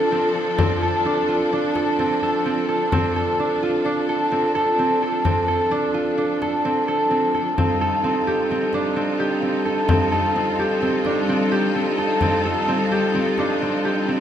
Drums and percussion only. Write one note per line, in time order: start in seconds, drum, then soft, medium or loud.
0.59 frame drum medium
1.75 frame drum soft
1.99 frame drum soft
2.22 frame drum soft
2.92 frame drum medium
4.32 frame drum soft
4.55 frame drum soft
5.25 frame drum medium
5.48 frame drum soft
6.42 frame drum soft
7.34 frame drum soft
7.58 frame drum medium
8.27 frame drum soft
8.51 frame drum soft
8.73 frame drum soft
9.65 frame drum soft
9.89 frame drum medium
10.58 frame drum soft
10.82 frame drum soft
11.05 frame drum soft
11.98 frame drum soft
12.21 frame drum medium
12.91 frame drum soft
13.14 frame drum soft
13.38 frame drum soft